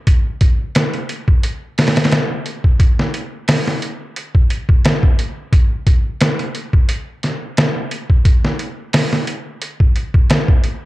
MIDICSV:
0, 0, Header, 1, 2, 480
1, 0, Start_track
1, 0, Tempo, 681818
1, 49, Time_signature, 4, 2, 24, 8
1, 7640, End_track
2, 0, Start_track
2, 0, Title_t, "Drums"
2, 49, Note_on_c, 9, 36, 99
2, 49, Note_on_c, 9, 42, 79
2, 119, Note_off_c, 9, 42, 0
2, 120, Note_off_c, 9, 36, 0
2, 287, Note_on_c, 9, 42, 67
2, 289, Note_on_c, 9, 36, 91
2, 357, Note_off_c, 9, 42, 0
2, 359, Note_off_c, 9, 36, 0
2, 528, Note_on_c, 9, 42, 85
2, 535, Note_on_c, 9, 38, 111
2, 599, Note_off_c, 9, 42, 0
2, 605, Note_off_c, 9, 38, 0
2, 659, Note_on_c, 9, 42, 39
2, 729, Note_off_c, 9, 42, 0
2, 769, Note_on_c, 9, 42, 64
2, 839, Note_off_c, 9, 42, 0
2, 900, Note_on_c, 9, 36, 89
2, 970, Note_off_c, 9, 36, 0
2, 1010, Note_on_c, 9, 42, 82
2, 1080, Note_off_c, 9, 42, 0
2, 1252, Note_on_c, 9, 46, 58
2, 1258, Note_on_c, 9, 38, 74
2, 1315, Note_off_c, 9, 46, 0
2, 1315, Note_on_c, 9, 46, 56
2, 1322, Note_off_c, 9, 38, 0
2, 1322, Note_on_c, 9, 38, 76
2, 1381, Note_off_c, 9, 46, 0
2, 1381, Note_on_c, 9, 46, 56
2, 1387, Note_off_c, 9, 38, 0
2, 1387, Note_on_c, 9, 38, 87
2, 1437, Note_off_c, 9, 46, 0
2, 1437, Note_on_c, 9, 46, 59
2, 1443, Note_off_c, 9, 38, 0
2, 1443, Note_on_c, 9, 38, 77
2, 1489, Note_on_c, 9, 42, 86
2, 1495, Note_off_c, 9, 38, 0
2, 1495, Note_on_c, 9, 38, 108
2, 1507, Note_off_c, 9, 46, 0
2, 1559, Note_off_c, 9, 42, 0
2, 1566, Note_off_c, 9, 38, 0
2, 1730, Note_on_c, 9, 42, 64
2, 1800, Note_off_c, 9, 42, 0
2, 1860, Note_on_c, 9, 36, 83
2, 1930, Note_off_c, 9, 36, 0
2, 1969, Note_on_c, 9, 36, 102
2, 1969, Note_on_c, 9, 42, 78
2, 2039, Note_off_c, 9, 36, 0
2, 2040, Note_off_c, 9, 42, 0
2, 2107, Note_on_c, 9, 38, 51
2, 2178, Note_off_c, 9, 38, 0
2, 2210, Note_on_c, 9, 42, 63
2, 2280, Note_off_c, 9, 42, 0
2, 2448, Note_on_c, 9, 46, 80
2, 2455, Note_on_c, 9, 38, 113
2, 2519, Note_off_c, 9, 46, 0
2, 2525, Note_off_c, 9, 38, 0
2, 2587, Note_on_c, 9, 38, 51
2, 2658, Note_off_c, 9, 38, 0
2, 2690, Note_on_c, 9, 42, 68
2, 2761, Note_off_c, 9, 42, 0
2, 2931, Note_on_c, 9, 42, 82
2, 3001, Note_off_c, 9, 42, 0
2, 3060, Note_on_c, 9, 36, 85
2, 3131, Note_off_c, 9, 36, 0
2, 3170, Note_on_c, 9, 42, 62
2, 3240, Note_off_c, 9, 42, 0
2, 3301, Note_on_c, 9, 36, 87
2, 3371, Note_off_c, 9, 36, 0
2, 3412, Note_on_c, 9, 42, 84
2, 3418, Note_on_c, 9, 38, 111
2, 3482, Note_off_c, 9, 42, 0
2, 3489, Note_off_c, 9, 38, 0
2, 3541, Note_on_c, 9, 36, 94
2, 3611, Note_off_c, 9, 36, 0
2, 3653, Note_on_c, 9, 42, 70
2, 3723, Note_off_c, 9, 42, 0
2, 3890, Note_on_c, 9, 36, 106
2, 3891, Note_on_c, 9, 42, 85
2, 3960, Note_off_c, 9, 36, 0
2, 3961, Note_off_c, 9, 42, 0
2, 4130, Note_on_c, 9, 36, 92
2, 4130, Note_on_c, 9, 42, 65
2, 4200, Note_off_c, 9, 36, 0
2, 4200, Note_off_c, 9, 42, 0
2, 4369, Note_on_c, 9, 42, 88
2, 4375, Note_on_c, 9, 38, 118
2, 4439, Note_off_c, 9, 42, 0
2, 4445, Note_off_c, 9, 38, 0
2, 4500, Note_on_c, 9, 42, 41
2, 4571, Note_off_c, 9, 42, 0
2, 4609, Note_on_c, 9, 42, 64
2, 4679, Note_off_c, 9, 42, 0
2, 4740, Note_on_c, 9, 36, 85
2, 4810, Note_off_c, 9, 36, 0
2, 4849, Note_on_c, 9, 42, 86
2, 4919, Note_off_c, 9, 42, 0
2, 5091, Note_on_c, 9, 42, 61
2, 5097, Note_on_c, 9, 38, 36
2, 5161, Note_off_c, 9, 42, 0
2, 5167, Note_off_c, 9, 38, 0
2, 5331, Note_on_c, 9, 42, 81
2, 5338, Note_on_c, 9, 38, 115
2, 5402, Note_off_c, 9, 42, 0
2, 5408, Note_off_c, 9, 38, 0
2, 5570, Note_on_c, 9, 42, 66
2, 5641, Note_off_c, 9, 42, 0
2, 5700, Note_on_c, 9, 36, 81
2, 5770, Note_off_c, 9, 36, 0
2, 5809, Note_on_c, 9, 36, 103
2, 5809, Note_on_c, 9, 42, 78
2, 5880, Note_off_c, 9, 36, 0
2, 5880, Note_off_c, 9, 42, 0
2, 5946, Note_on_c, 9, 38, 50
2, 6016, Note_off_c, 9, 38, 0
2, 6049, Note_on_c, 9, 42, 69
2, 6120, Note_off_c, 9, 42, 0
2, 6288, Note_on_c, 9, 46, 80
2, 6294, Note_on_c, 9, 38, 111
2, 6358, Note_off_c, 9, 46, 0
2, 6365, Note_off_c, 9, 38, 0
2, 6425, Note_on_c, 9, 38, 50
2, 6496, Note_off_c, 9, 38, 0
2, 6528, Note_on_c, 9, 42, 69
2, 6599, Note_off_c, 9, 42, 0
2, 6769, Note_on_c, 9, 42, 84
2, 6840, Note_off_c, 9, 42, 0
2, 6900, Note_on_c, 9, 36, 87
2, 6970, Note_off_c, 9, 36, 0
2, 7009, Note_on_c, 9, 42, 59
2, 7080, Note_off_c, 9, 42, 0
2, 7140, Note_on_c, 9, 36, 88
2, 7210, Note_off_c, 9, 36, 0
2, 7249, Note_on_c, 9, 42, 89
2, 7255, Note_on_c, 9, 38, 115
2, 7319, Note_off_c, 9, 42, 0
2, 7326, Note_off_c, 9, 38, 0
2, 7381, Note_on_c, 9, 36, 97
2, 7451, Note_off_c, 9, 36, 0
2, 7488, Note_on_c, 9, 42, 65
2, 7558, Note_off_c, 9, 42, 0
2, 7640, End_track
0, 0, End_of_file